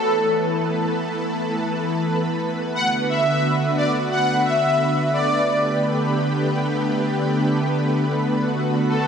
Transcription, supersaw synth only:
0.00 1.00 A4 loud
2.75 2.89 F#5 loud
3.09 3.73 E5 loud
3.77 3.91 D5 medium
4.11 4.46 F#5 loud
4.45 5.09 E5 loud
5.14 6.12 D5 loud
8.89 9.07 A4 loud

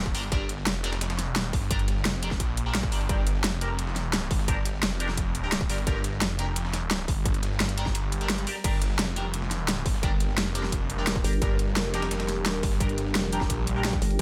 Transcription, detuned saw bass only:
0.00 0.13 E1 loud
0.15 0.31 G1 loud
0.32 0.65 G1 loud
0.67 1.27 F1 loud
1.27 1.52 E1 loud
1.53 2.04 G1 loud
2.05 2.39 F1 loud
2.40 2.91 A#1 loud
2.92 3.08 G1 loud
3.09 3.43 G1 loud
3.44 4.29 F1 loud
4.31 4.81 G1 loud
4.83 5.68 F1 loud
5.69 5.85 G1 loud
5.87 6.20 G1 loud
6.22 7.07 F1 loud
7.08 7.59 G1 loud
7.60 8.46 G1 loud
8.64 8.98 G1 loud
8.99 9.84 F1 loud
9.86 10.36 G1 loud
10.38 10.98 F1 loud
10.98 11.23 E1 loud
11.42 11.75 G1 loud
11.76 12.36 F1 loud
12.36 12.62 E1 loud
12.63 13.14 G1 loud
13.15 13.48 F1 loud
13.50 14.00 A#1 loud

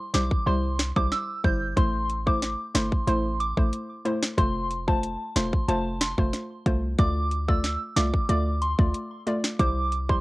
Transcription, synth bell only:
0.14 0.43 D6 medium
0.47 0.62 C6 medium
0.97 1.10 D6 medium
1.12 1.27 E6 medium
1.45 1.60 G6 medium
1.77 2.06 C6 loud
2.27 2.56 D6 medium
2.75 3.04 C6 medium
3.07 3.23 C6 medium
3.40 3.55 D6 medium
4.38 4.67 C6 loud
4.88 5.17 A5 medium
5.36 5.65 C6 medium
5.68 5.84 A5 medium
6.01 6.16 C6 medium
6.99 7.28 D6 loud
7.49 7.78 E6 medium
7.96 8.26 D6 medium
8.29 8.45 D6 medium
8.62 8.77 C6 medium
9.60 9.89 D6 loud
10.09 10.21 C6 medium

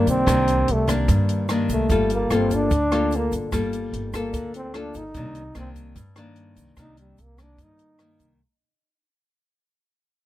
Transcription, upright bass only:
0.07 0.26 C2 medium
0.27 0.65 C2 medium
0.68 1.06 C2 medium
1.08 1.65 G2 medium
1.69 1.91 C2 medium
1.90 2.27 G1 medium
2.31 2.68 G1 medium
2.71 3.28 D2 medium
3.32 3.51 G1 medium
3.52 3.90 G1 medium
3.93 4.31 G1 medium
4.33 4.90 D2 medium
4.94 5.17 G1 medium
5.15 5.53 C2 medium
5.55 5.93 C2 medium
5.96 6.53 G2 medium
6.56 6.76 C2 medium
6.77 7.15 C2 medium
7.18 7.56 C2 medium
7.58 8.16 G2 medium
8.19 8.38 C2 medium

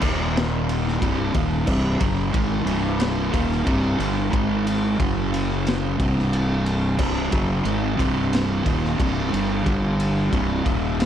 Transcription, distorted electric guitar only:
0.01 1.00 D#2 medium
0.01 1.00 A#2 loud
0.01 1.00 D#3 loud
1.01 1.33 C2 medium
1.01 1.33 G2 loud
1.01 1.34 C3 loud
1.33 1.66 D#2 medium
1.33 1.66 A#2 loud
1.33 1.67 D#3 loud
1.67 1.99 C2 loud
1.67 1.99 G2 loud
1.67 2.00 C3 loud
1.99 2.31 F#2 medium
1.99 2.32 C#3 medium
1.99 2.32 F#3 loud
2.31 2.64 G#2 loud
2.31 2.65 D#3 medium
2.31 2.66 G#3 loud
2.64 3.31 C2 medium
2.64 3.32 G2 loud
2.64 3.32 C3 loud
3.31 3.64 D#2 medium
3.31 3.64 A#2 loud
3.31 3.65 D#3 loud
3.64 3.97 C2 loud
3.64 3.97 G2 loud
3.64 3.99 C3 loud
3.98 4.29 G2 loud
3.98 4.30 D3 loud
3.98 4.31 G3 loud
4.30 4.97 G#2 loud
4.30 4.97 D#3 loud
4.30 4.98 G#3 loud
4.98 5.97 F#2 loud
4.98 5.98 C#3 loud
4.98 5.98 F#3 loud
5.98 6.97 C2 loud
5.98 6.97 G2 loud
5.98 6.98 C3 loud
6.98 7.30 C2 loud
6.98 7.31 G2 loud
6.98 7.32 C3 loud
7.31 7.63 F#2 loud
7.31 7.64 C#3 loud
7.31 7.64 F#3 loud
7.64 7.96 G#2 loud
7.64 7.96 D#3 loud
7.64 7.97 G#3 loud
7.96 8.63 C2 loud
7.96 8.63 G2 medium
7.96 8.64 C3 loud
8.64 8.97 D#2 loud
8.64 8.97 A#2 loud
8.64 8.98 D#3 loud
8.97 9.29 C2 medium
8.97 9.28 G2 loud
8.97 9.30 C3 loud
9.29 9.62 G2 medium
9.29 9.62 D3 loud
9.29 9.62 G3 loud
9.63 10.30 G2 loud
9.63 10.30 D3 loud
9.63 10.30 G3 loud
10.31 10.64 C2 loud
10.31 10.64 G2 loud
10.31 10.64 C3 loud
10.65 11.06 D#2 medium
10.65 11.06 A#2 loud
10.65 11.06 D#3 loud

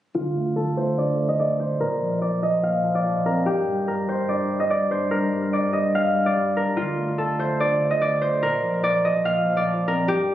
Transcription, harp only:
0.15 2.67 F4 loud
0.56 1.86 A4 medium
0.77 1.59 C5 medium
0.98 1.34 D5 medium
1.28 1.45 D#5 medium
1.39 2.21 D5 medium
1.60 3.58 C5 medium
1.80 3.25 A#4 medium
2.22 2.49 D5 medium
2.43 3.01 D#5 medium
2.63 4.30 F5 medium
2.95 4.28 D5 medium
3.26 3.87 A#4 medium
3.46 5.81 G4 loud
3.88 5.11 A#4 medium
4.09 4.91 C5 medium
4.29 4.66 D5 medium
4.60 4.76 D#5 medium
4.70 5.53 D5 medium
4.91 6.89 C5 medium
5.11 6.56 A#4 medium
5.53 5.79 D5 medium
5.73 6.32 D#5 medium
5.95 7.61 F5 medium
6.26 7.60 D5 medium
6.57 7.24 A#4 medium
6.77 9.29 F4 loud
7.18 8.49 A4 medium
7.39 8.21 C5 medium
7.60 7.97 D5 medium
7.91 8.07 D#5 medium
8.01 8.83 D5 medium
8.21 10.19 C5 medium
8.43 9.87 A#4 medium
8.84 9.11 D5 medium
9.05 9.63 D#5 medium
9.25 10.35 F5 medium
9.57 10.35 D5 medium
9.88 10.35 A#4 medium
10.08 10.35 G4 loud

